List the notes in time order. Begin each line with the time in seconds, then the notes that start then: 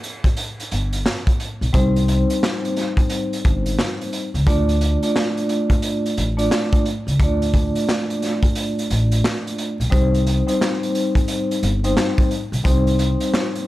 0.03 closed hi-hat
0.24 kick, closed hi-hat
0.37 closed hi-hat
0.60 closed hi-hat
0.71 G1, closed hi-hat
0.93 closed hi-hat
1.06 snare, clap
1.27 kick, closed hi-hat
1.40 closed hi-hat
1.61 B1, closed hi-hat
1.73 C2 G3 C4 D#4 C5, kick, closed hi-hat
1.96 closed hi-hat
2.08 closed hi-hat
2.30 closed hi-hat
2.43 snare, clap
2.65 closed hi-hat
2.77 snare, closed hi-hat
2.97 kick, closed hi-hat
3.10 closed hi-hat
3.33 closed hi-hat
3.45 G1, kick, closed hi-hat
3.66 closed hi-hat
3.79 snare, clap
4.01 closed hi-hat
4.13 closed hi-hat
4.34 C#2, closed hi-hat
4.47 D2 A3 D4 F4 D5, kick, closed hi-hat
4.69 closed hi-hat
4.81 closed hi-hat
5.03 A3 D4 F4 D5, closed hi-hat
5.16 snare, clap
5.37 closed hi-hat
5.49 closed hi-hat
5.70 kick, closed hi-hat
5.82 closed hi-hat
6.06 closed hi-hat
6.17 A1, closed hi-hat
6.37 A3 D4 F4 D5, closed hi-hat
6.51 snare, clap
6.73 kick, closed hi-hat
6.86 closed hi-hat
7.07 C#2, closed hi-hat
7.20 D2 A3 D4 F4 D5, kick, closed hi-hat
7.42 closed hi-hat
7.54 kick, closed hi-hat
7.75 closed hi-hat
7.89 snare, clap
8.10 closed hi-hat
8.22 snare, closed hi-hat
8.43 kick, closed hi-hat
8.55 closed hi-hat
8.79 closed hi-hat
8.90 A1, closed hi-hat
9.12 closed hi-hat
9.24 snare, clap
9.47 closed hi-hat
9.58 closed hi-hat
9.80 B1, closed hi-hat
9.90 C2 G3 C4 D#4 C5, kick, closed hi-hat
10.14 closed hi-hat
10.27 closed hi-hat
10.47 G3 C4 D#4 C5, closed hi-hat
10.61 snare, clap
10.83 closed hi-hat
10.95 closed hi-hat
11.15 kick, closed hi-hat
11.28 closed hi-hat
11.51 closed hi-hat
11.63 G1, closed hi-hat
11.84 G3 C4 D#4 C5, closed hi-hat
11.97 snare, clap
12.18 kick, closed hi-hat
12.31 closed hi-hat
12.52 B1, closed hi-hat
12.64 C2 G3 C4 D#4 C5, kick, closed hi-hat
12.87 closed hi-hat
12.99 closed hi-hat
13.20 closed hi-hat
13.34 snare, clap
13.55 closed hi-hat